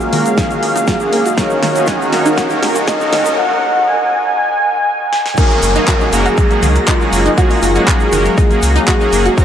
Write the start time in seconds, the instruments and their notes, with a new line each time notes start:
Already playing: analog synth pad G#3 A#3 F5, soft synth lead G#4, riser
0.01 shaker
0.13 synth pluck D#3, supersaw synth A#3 C#4 F#4 A#4, open hi-hat
0.26 closed hi-hat, shaker
0.38 synth pluck D#4, kick, snare, closed hi-hat, shaker
0.51 supersaw synth A#3 C#4 F#4 G#4, closed hi-hat, shaker
0.63 analog synth bass C#2, open hi-hat
0.76 synth pluck D#4, closed hi-hat, shaker
0.87 synth pluck F#4, kick, snare, closed hi-hat, shaker
1.00 supersaw synth A#3 C#4 F#4 G#4, synth pluck D#4, shaker
1.13 synth pluck A#3, open hi-hat
1.26 synth pluck F#4, closed hi-hat, shaker
1.38 supersaw synth D#3 C#4 D#4 F#4 A#4, analog synth pad D#3 C#4 F#4, soft synth lead C#5, kick, snare, closed hi-hat, shaker
1.50 shaker
1.63 synth pluck D#3, snare, open hi-hat
1.76 supersaw synth D#3 C#4 D#4 F#4 G#4, closed hi-hat, shaker
1.87 synth pluck D#4, kick, snare, closed hi-hat, shaker
2.02 shaker
2.13 supersaw synth D#3 C#4 D#4 F#4 C#5, soft synth lead A#4, snare, open hi-hat
2.26 synth pluck D#4, closed hi-hat, shaker
2.37 synth pluck F#4, kick, snare, closed hi-hat, shaker
2.50 supersaw synth D#3 C#4 D#4 F#4 A#4, synth pluck D#4, closed hi-hat, shaker
2.63 synth pluck A#3, snare, open hi-hat
2.75 synth pluck F#4, closed hi-hat, shaker
2.88 soft synth lead D#5, kick, snare, closed hi-hat, shaker
3.01 supersaw synth D#3 C#4 D#4 F#4 A#4, shaker
3.13 synth pluck D#3, snare, open hi-hat
3.26 closed hi-hat, shaker
3.38 soft synth lead F#5
3.88 soft synth lead G#5
5.13 snare
5.26 snare
5.37 analog synth pad F#3 G#3 A#3, supersaw synth A#3 C#4 F#4 G#4, synth pluck D#4 D#5, soft synth lead A#4, synth texture A#5, kick, closed hi-hat, crash, downlifter, shaker
5.50 shaker
5.63 analog synth bass F#1, open hi-hat, shaker
5.75 supersaw synth A#3 C#4 F#4 G#4, synth pluck D#4 D#5, closed hi-hat, shaker
5.88 synth pluck F#4 F#5, kick, clap, closed hi-hat, shaker
6.01 synth pluck D#4 D#5, shaker
6.13 analog synth bass F#1, supersaw synth A#3 C#4 F#4 A#4, synth pluck A#3 A#4, soft synth lead G#4, open hi-hat, shaker
6.26 synth pluck F#4 F#5, closed hi-hat, shaker
6.38 kick, closed hi-hat, shaker
6.50 supersaw synth A#3 C#4 F#4 G#4, closed hi-hat, shaker
6.63 analog synth bass C#2, synth pluck D#3 D#4, open hi-hat, shaker
6.75 closed hi-hat, shaker
6.87 synth pluck D#4 D#5, soft synth lead F4, kick, clap, closed hi-hat, shaker
7.01 supersaw synth A#3 C#4 F#4 G#4, shaker
7.13 analog synth bass F#1, open hi-hat, shaker
7.26 synth pluck D#4 D#5, closed hi-hat, shaker
7.38 supersaw synth A#3 C#4 F#4 G#4, soft synth lead F4, synth pluck F#4 F#5, kick, closed hi-hat, shaker
7.50 synth pluck D#4 D#5, open hi-hat, shaker
7.63 analog synth bass F#1, synth pluck A#3 A#4, open hi-hat, shaker
7.75 supersaw synth A#3 C#4 F#4 G#4, synth pluck F#4 F#5, closed hi-hat, shaker
7.88 soft synth lead G#4, kick, clap, closed hi-hat, shaker
8.00 shaker
8.12 analog synth bass F#1, synth pluck D#3 D#4, supersaw synth A#3 C#4 F#4 A#4, open hi-hat, shaker
8.25 closed hi-hat, shaker
8.38 synth pluck D#4 D#5, kick, closed hi-hat, shaker
8.51 supersaw synth A#3 C#4 F#4 G#4, closed hi-hat, shaker
8.63 analog synth bass C#2, open hi-hat, shaker
8.76 synth pluck D#4 D#5, closed hi-hat, shaker
8.87 synth pluck F#4 F#5, kick, clap, closed hi-hat, shaker
9.01 supersaw synth A#3 C#4 F#4 G#4, synth pluck D#4 D#5, shaker
9.13 analog synth bass F#1, synth pluck A#3 A#4, open hi-hat, shaker
9.25 synth pluck F#4 F#5, closed hi-hat, shaker
9.38 analog synth pad D#3 C#4 F5, supersaw synth D#3 C#4 D#4 F#4 A#4, soft synth lead C#5, kick, closed hi-hat, shaker